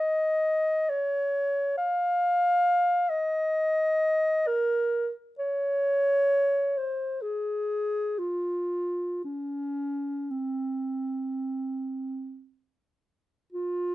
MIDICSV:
0, 0, Header, 1, 2, 480
1, 0, Start_track
1, 0, Key_signature, -4, "minor"
1, 0, Tempo, 500000
1, 13390, End_track
2, 0, Start_track
2, 0, Title_t, "Clarinet"
2, 0, Program_c, 0, 71
2, 0, Note_on_c, 0, 75, 78
2, 857, Note_on_c, 0, 73, 73
2, 871, Note_off_c, 0, 75, 0
2, 1698, Note_off_c, 0, 73, 0
2, 1704, Note_on_c, 0, 77, 88
2, 2968, Note_on_c, 0, 75, 79
2, 2983, Note_off_c, 0, 77, 0
2, 4291, Note_on_c, 0, 70, 75
2, 4306, Note_off_c, 0, 75, 0
2, 4906, Note_off_c, 0, 70, 0
2, 5174, Note_on_c, 0, 73, 83
2, 6500, Note_on_c, 0, 72, 63
2, 6515, Note_off_c, 0, 73, 0
2, 6929, Note_on_c, 0, 68, 67
2, 6943, Note_off_c, 0, 72, 0
2, 7860, Note_on_c, 0, 65, 58
2, 7874, Note_off_c, 0, 68, 0
2, 8861, Note_off_c, 0, 65, 0
2, 8873, Note_on_c, 0, 61, 63
2, 9895, Note_on_c, 0, 60, 49
2, 9909, Note_off_c, 0, 61, 0
2, 11931, Note_off_c, 0, 60, 0
2, 12983, Note_on_c, 0, 65, 67
2, 13390, Note_off_c, 0, 65, 0
2, 13390, End_track
0, 0, End_of_file